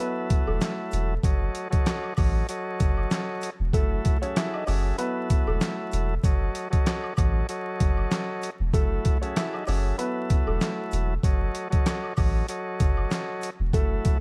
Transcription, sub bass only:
0.47 E1
0.93 E1
1.24 F#1
2.18 A1
2.81 F#1
3.60 E1
3.74 F#1
4.68 F#1
5.47 E1
5.93 E1
6.24 F#1
7.18 A1
7.81 F#1
8.60 E1
8.74 F#1
9.68 F#1
10.47 E1
10.93 E1
11.24 F#1
12.18 A1
12.81 F#1
13.60 E1
13.74 F#1

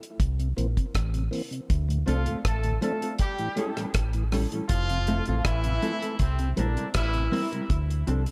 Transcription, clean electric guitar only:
2.07 A3 C4 F4 A4
2.27 A3 C4 F4 A4
2.82 A3 C4 F4 A4
3.02 A3 C4 F4 A4
3.57 G3 C#4 E4 A4
3.78 G3 C#4 E4 A4
4.33 G3 C#4 E4 A4
4.53 G3 C#4 E4 A4
5.08 A3 C4 E4 A4
5.27 A3 C4 E4 A4
5.82 A3 C4 E4 A4
6.02 A3 C4 E4 A4
6.57 G3 C4 E4 A#4
6.77 G3 C4 E4 A#4
7.32 G3 C4 E4 A#4
7.52 G3 C4 E4 A#4
8.07 F3 C4 D4 A4

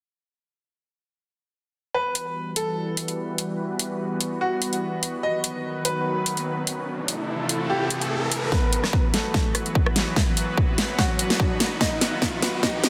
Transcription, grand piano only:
1.94 B4
2.56 A4
4.41 F#4
5.23 D#5
5.85 B4
7.70 G4
8.52 B3 B4
9.14 A3 A4
10.99 F#3 F#4
11.81 D#4 D#5
12.42 B3 B4
12.63 D#4 D#5

